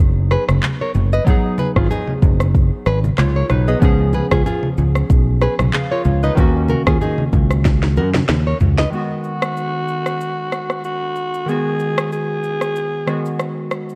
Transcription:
Already playing: synth keys F#3 B3 D#4 G#4
0.00 fingered electric bass F#1
0.31 nylon-string guitar G#4 B4, cross-stick, shaker
0.49 fingered electric bass F#1, cross-stick, high conga, shaker
0.63 clap, high conga, shaker
0.81 nylon-string guitar A#4 C#5
0.94 fingered electric bass F#1, high conga, low conga, shaker
1.13 nylon-string guitar B4 D#5, shaker
1.24 synth keys F#3 B3 D#4, kick, low conga, shaker
1.30 synth keys G#4
1.58 nylon-string guitar G#4 B4, high conga, shaker
1.76 fingered electric bass G#1, nylon-string guitar F4 G#4, kick, cross-stick, shaker
1.91 nylon-string guitar D#4 G#4, low conga, shaker
2.08 high conga
2.22 fingered electric bass F#1, kick, low conga, shaker
2.40 cross-stick, shaker
2.55 kick, shaker
2.86 fingered electric bass G#1, nylon-string guitar G#4 B4, cross-stick, shaker
3.04 high conga, shaker
3.18 fingered electric bass C#2, synth keys F4 C#5, cross-stick, clap, high conga, shaker
3.36 nylon-string guitar A#4 C#5
3.49 fingered electric bass B1, synth keys D#4 B4, cross-stick, high conga, low conga, shaker
3.68 synth keys B3 G#4, nylon-string guitar B4 D#5, shaker
3.79 fingered electric bass C#2, synth keys F3 B3 C#4, kick, low conga, shaker
3.85 synth keys G#4
4.13 nylon-string guitar G#4 B4, high conga, shaker
4.31 fingered electric bass C#2, nylon-string guitar F4 G#4, kick, cross-stick, shaker
4.46 nylon-string guitar F4 G#4, low conga, shaker
4.63 high conga
4.77 fingered electric bass C#2, low conga, shaker
4.95 cross-stick, shaker
5.10 fingered electric bass B1, kick, shaker
5.41 nylon-string guitar G#4 B4, cross-stick, shaker
5.59 fingered electric bass B1, cross-stick, high conga, shaker
5.73 synth keys G#4 F5, clap, high conga, shaker
5.91 synth keys F4 C#5, nylon-string guitar A#4 C#5
6.05 fingered electric bass C#2, high conga, low conga, shaker
6.23 synth keys D#4 B4, nylon-string guitar B4 D#5, shaker
6.35 fingered electric bass D#2, synth keys D#3 A#3 C#4, kick, low conga, shaker
6.40 synth keys F#4
6.68 nylon-string guitar F#4 A#4, high conga, shaker
6.87 fingered electric bass D#2, nylon-string guitar F4 G#4, kick, cross-stick, shaker
7.01 nylon-string guitar D#4 G#4, low conga, shaker
7.18 high conga
7.33 fingered electric bass C#2, kick, low conga, shaker
7.51 cross-stick, shaker
7.65 kick, snare, shaker
7.83 snare
7.96 fingered electric bass F#2, nylon-string guitar F#4 A#4, shaker
8.14 snare, high conga, shaker
8.29 fingered electric bass D#2, snare, high conga, shaker
8.47 nylon-string guitar A#4 C#5
8.60 fingered electric bass C#2, floor tom, high conga, low conga, shaker
8.78 nylon-string guitar B4 D#5, snare, shaker
8.90 synth keys D#3 G#3 B3, alto saxophone F#4, shaker
8.95 synth keys F#4
9.24 shaker
9.42 cross-stick, shaker
9.57 shaker
9.88 shaker
10.06 cross-stick, shaker
10.21 shaker
10.52 cross-stick, shaker
10.70 cross-stick, shaker
10.84 alto saxophone F#4, shaker
11.16 shaker
11.34 shaker
11.46 synth keys D#3 G#3 B3, alto saxophone G#4, shaker
11.51 synth keys F#4
11.79 shaker
11.98 cross-stick, shaker
12.12 alto saxophone G#4, shaker
12.43 shaker
12.61 cross-stick, shaker
12.76 shaker
13.06 synth keys D#3 G#3 B3 F#4, cross-stick, shaker
13.25 shaker
13.39 cross-stick, shaker
13.71 cross-stick, shaker
13.89 shaker

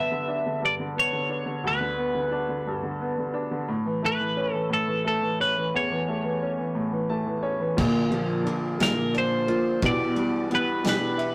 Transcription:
Already playing: upright piano G2 D3 B3, clean electric guitar E5
0.11 upright piano D3
0.28 upright piano D4
0.46 upright piano D3
0.62 upright piano G2, clean electric guitar D5
0.80 upright piano D3
0.96 upright piano B3, clean electric guitar C#5
1.13 upright piano D3
1.30 upright piano D4
1.46 upright piano D3
1.64 upright piano D2, clean electric guitar B4
1.80 upright piano D3
1.98 upright piano B3
2.15 upright piano D3
2.31 upright piano D4
2.49 upright piano D3
2.67 upright piano G2
2.76 clean electric guitar A4
2.83 upright piano D3
3.01 upright piano B3
3.18 upright piano D3
3.34 upright piano D4
3.51 upright piano D3
3.68 upright piano A2
3.86 upright piano E3
4.03 upright piano A3, clean electric guitar B4
4.20 upright piano E3
4.37 upright piano C#4
4.53 upright piano E3, clean electric guitar A4
4.70 upright piano A2, clean electric guitar A4
4.87 upright piano E3
5.05 upright piano A3, clean electric guitar A4
5.22 upright piano E3
5.40 upright piano C#4, clean electric guitar B4
5.57 upright piano E3
5.74 upright piano E2, clean electric guitar C#5
5.92 upright piano E3
6.08 upright piano A3
6.24 upright piano E3
6.42 upright piano C#4
6.59 upright piano E3
6.75 upright piano A2
6.92 upright piano E3
7.10 upright piano A3 A5
7.26 upright piano E3
7.43 upright piano C#4 C#5
7.60 upright piano E3
7.77 upright piano A#1 A#2, steel-string acoustic guitar A#2 D3 F3 A#3 D4 A#4, kick, crash
8.11 upright piano F3, ride
8.45 steel-string acoustic guitar F3 A#3 D4 A#4, upright piano D4, ride
8.79 steel-string acoustic guitar A#2 D3 F3 A#3 D4 A#4, upright piano F4, clean electric guitar A#4, snare, ride
9.14 upright piano D4, ride
9.18 clean electric guitar C5
9.47 steel-string acoustic guitar F3 A#3 D4 A#4, upright piano F4, ride
9.82 upright piano B1 B2, steel-string acoustic guitar B2 E3 B3 D4 G4, kick, ride
9.86 clean electric guitar D5
10.16 upright piano G3, ride
10.51 steel-string acoustic guitar E3 B3 D4 G4, upright piano B3, ride
10.55 clean electric guitar B4
10.84 steel-string acoustic guitar B2 E3 B3 D4 G4, upright piano D4, snare, ride
10.89 clean electric guitar B4
11.18 upright piano E4, ride

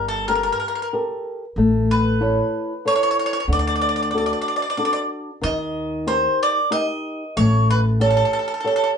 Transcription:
Already playing: upright bass G1, nylon-string guitar G3
0.08 mandolin A4
0.28 nylon-string guitar G4 A4 A#4, mandolin A#4
0.35 mandolin A#4
0.43 mandolin A#4
0.52 mandolin A#4
0.60 mandolin A#4
0.68 mandolin A#4
0.75 mandolin A#4
0.82 mandolin A#4
0.93 nylon-string guitar G4 A4 A#4
1.56 upright bass A1, nylon-string guitar A3
1.91 mandolin B4
2.21 nylon-string guitar E4 A4 C#5
2.85 nylon-string guitar E4 A4 C#5, mandolin C#5
2.96 mandolin C#5
3.03 mandolin C#5
3.11 mandolin C#5
3.19 mandolin C#5
3.26 mandolin C#5
3.33 mandolin C#5
3.40 mandolin C#5
3.48 upright bass D2, nylon-string guitar D3
3.53 mandolin D5
3.59 mandolin D5
3.67 mandolin D5
3.76 mandolin D5
3.81 mandolin D5
3.89 mandolin D5
3.96 mandolin D5
4.03 mandolin D5
4.11 nylon-string guitar D4 F#4 A4, mandolin D5
4.18 mandolin D5
4.26 mandolin D5
4.33 mandolin D5
4.42 mandolin D5
4.48 mandolin D5
4.56 mandolin D5
4.62 mandolin D5
4.70 mandolin D5
4.77 nylon-string guitar D4 F#4 A4, mandolin D5
4.85 mandolin D5
4.93 mandolin D5
5.41 upright bass D#2, nylon-string guitar D#3, mandolin D#5
6.07 nylon-string guitar D#4 G4 A#4, mandolin C5
6.43 mandolin D5
6.71 nylon-string guitar D#4 G4 A#4, mandolin D#5
7.37 upright bass A1, nylon-string guitar A3, mandolin C#5
7.71 mandolin B4
8.00 nylon-string guitar G4 A4 C#5, mandolin A4
8.10 mandolin A4
8.17 mandolin A4
8.25 mandolin A4
8.33 mandolin A4
8.39 mandolin A4
8.48 mandolin A4
8.54 mandolin A4
8.60 nylon-string guitar G4, mandolin A4
8.65 nylon-string guitar A4 C#5, mandolin A4
8.76 mandolin A4
8.84 mandolin A4

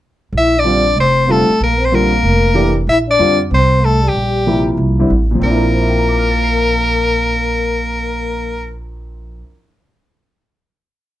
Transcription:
0.33 upright bass A#1
0.37 trombone E4, soprano saxophone E5
0.57 trombone D4, soprano saxophone D5
0.64 grand piano D3 G3 C4 F4
0.96 upright bass F1, trombone C4
1.00 soprano saxophone C5
1.28 grand piano D3 G3 C4 F4, trombone A3, soprano saxophone A4
1.49 muted upright bass stroke
1.60 upright bass A#1, trombone A#3, soprano saxophone A#4
1.80 trombone C4
1.85 soprano saxophone C5
1.92 grand piano D3 G3 C4 F4, trombone A#3, soprano saxophone A#4
2.23 upright bass F1
2.54 grand piano E3 A3 D4 G4
2.87 upright bass A#1, trombone E4, soprano saxophone E5
3.08 trombone D4, soprano saxophone D5
3.19 upright bass F2, grand piano D3 G3 C4 F4
3.51 upright bass C2, trombone C4, soprano saxophone C5
3.83 trombone A3, soprano saxophone A4
4.04 trombone G3
4.08 soprano saxophone G4
4.14 upright bass A#1
4.47 grand piano C3 F3 A#3 E4
4.77 upright bass C2
4.99 grand piano D3 G3 C4 E4
5.10 upright bass A1
5.31 grand piano A#2
5.35 grand piano F3
5.40 upright bass A#1, trombone A#3, grand piano C4, soprano saxophone A#4
5.45 grand piano D4
5.50 grand piano E4
5.56 grand piano A#4
5.73 grand piano C5
5.81 grand piano E5
5.89 grand piano G5
5.98 grand piano A#5
6.08 grand piano D6
6.19 grand piano F6
6.30 grand piano A6
6.44 grand piano C7

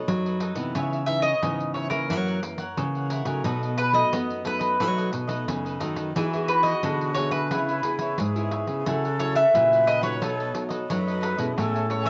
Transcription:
Already playing: cavaquinho A4 B4 D#5, mandolin C#5
0.07 nylon-string guitar F#2 F#3 A3 D#4, pandeiro
0.26 cavaquinho A4 B4 D#5, pandeiro
0.40 cavaquinho D#4 A4 B4 D#5, pandeiro
0.55 nylon-string guitar C3 E3 B3 D#4, cavaquinho A4 B4 D#5, pandeiro
0.75 nylon-string guitar C#3, cavaquinho E4 B4 C#5 E5, pandeiro
0.92 cavaquinho B4 C#5 E5, pandeiro
1.06 nylon-string guitar E3 B3 D#4, mandolin E5, muted cavaquinho stroke, pandeiro
1.22 cavaquinho B4 C#5, mandolin D#5, pandeiro
1.42 nylon-string guitar G#2 C#3 E3 B3 D#4, pandeiro
1.60 pandeiro
1.74 cavaquinho E4 B4 C#5 E5, mandolin C#5, pandeiro
1.90 nylon-string guitar E3 A#3 C#4, mandolin A#4, cavaquinho B4 C#5 E5, pandeiro
2.10 nylon-string guitar F#2 F#3, cavaquinho E4 A#4 C#5 F#5, pandeiro
2.28 cavaquinho A#4 C#5 F#5, pandeiro
2.42 nylon-string guitar E3 A#3 C#4, muted cavaquinho stroke, pandeiro
2.58 cavaquinho A#4 C#5 F#5, pandeiro
2.77 nylon-string guitar C#3 E3 A#3 C#4, pandeiro
2.95 cavaquinho A#4 C#5 F#5, pandeiro
3.10 cavaquinho E4 A#4 C#5 F#5, pandeiro
3.26 nylon-string guitar C#3 F#3 A3 D#4, cavaquinho A#4 C#5 F#5, pandeiro
3.44 nylon-string guitar B2, cavaquinho D#4 A4 B4 D#5, pandeiro
3.63 cavaquinho A4 B4 D#5, pandeiro
3.78 mandolin B4, muted cavaquinho stroke, pandeiro
3.93 nylon-string guitar F#3 A3 D#4, cavaquinho A4 B4 D#5, mandolin D#5, pandeiro
4.13 nylon-string guitar F#2 B3, pandeiro
4.30 pandeiro
4.44 nylon-string guitar F#3 A3 D#4, cavaquinho D#4 A4 B4 D#5, mandolin B4, pandeiro
4.59 cavaquinho A4 B4 D#5, pandeiro
4.80 nylon-string guitar B2 F#3 A3 D#4, cavaquinho D#4 A4 B4 D#5, pandeiro
4.97 cavaquinho A4 B4 D#5, pandeiro
5.12 nylon-string guitar B2, muted cavaquinho stroke, pandeiro
5.28 nylon-string guitar F#3 A3 D#4, cavaquinho A4 B4 D#5, pandeiro
5.47 nylon-string guitar F#2 C#3, pandeiro
5.65 cavaquinho A4 B4 D#5, pandeiro
5.80 nylon-string guitar D#3 F#3 A3 D#4, cavaquinho D#4 A4 B4 D#5, pandeiro
5.95 cavaquinho A4 B4 D#5, pandeiro
6.15 nylon-string guitar E3 B3 D#4 G#4, cavaquinho D#4 G#4 B4 E5, flute F#4, pandeiro
6.33 nylon-string guitar B3 D#4 G#4, cavaquinho G#4 B4 E5, pandeiro
6.48 mandolin B4, muted cavaquinho stroke, pandeiro
6.63 cavaquinho G#4 B4, mandolin D#5, pandeiro
6.83 nylon-string guitar B2 D3 B3 D#4 G#4, pandeiro
7.01 pandeiro
7.14 nylon-string guitar B3 D#4 G#4, cavaquinho D#4 G#4 B4 E5, mandolin C#5, pandeiro
7.31 cavaquinho G#4 B4 E5, mandolin B4, pandeiro
7.51 nylon-string guitar C#3 B3 E4 G#4, flute E4, cavaquinho E4 B4 C#5 E5, pandeiro
7.68 cavaquinho B4 C#5 E5, pandeiro
7.83 nylon-string guitar B3 E4 G#4, muted cavaquinho stroke, pandeiro
7.99 cavaquinho B4 C#5 E5, pandeiro
8.18 nylon-string guitar G#2, flute G#4, pandeiro
8.35 nylon-string guitar B3 E4 G#4, cavaquinho B4 C#5 E5, pandeiro
8.51 cavaquinho E4 B4 C#5 E5, pandeiro
8.66 nylon-string guitar C#3, cavaquinho B4 C#5 E5, pandeiro
8.86 nylon-string guitar C#3 F#3 A3 E4, cavaquinho E4 A4 C#5 F#5, flute A4, pandeiro
9.04 cavaquinho A4 C#5 F#5, pandeiro
9.19 nylon-string guitar F#3 A3 E4, mandolin C#5, pandeiro
9.35 cavaquinho A4 C#5 F#5, mandolin E5, pandeiro
9.54 nylon-string guitar A#2 C#3 F#3 A3 E4, flute B4, pandeiro
9.73 pandeiro
9.86 cavaquinho E4 A4 C#5 F#5, mandolin D#5, pandeiro
10.02 nylon-string guitar F#3 A3 D#4, cavaquinho A4 C#5 F#5, mandolin C#5, pandeiro
10.22 nylon-string guitar B2, cavaquinho D#4 A4 B4 D#5, flute A4, pandeiro
10.40 cavaquinho A4 B4 D#5, pandeiro
10.54 nylon-string guitar F#3 A3 D#4, muted cavaquinho stroke, pandeiro
10.69 cavaquinho A4 B4 D#5, pandeiro
10.89 nylon-string guitar F#2 F#3 A3 D#4, flute B4, pandeiro
11.07 cavaquinho A4 B4 D#5, pandeiro
11.21 cavaquinho D#4 A4 B4 D#5, pandeiro
11.37 nylon-string guitar B2 G#3 C#4 E4, cavaquinho A4 B4 D#5, pandeiro
11.56 nylon-string guitar A2, cavaquinho A4 C#5 E5 G#5, flute A4, pandeiro
11.74 cavaquinho C#5 E5 G#5, pandeiro
11.90 nylon-string guitar G#3 C#4 E4, mandolin C#5, pandeiro
12.03 cavaquinho C#5 E5 G#5, mandolin E5, pandeiro

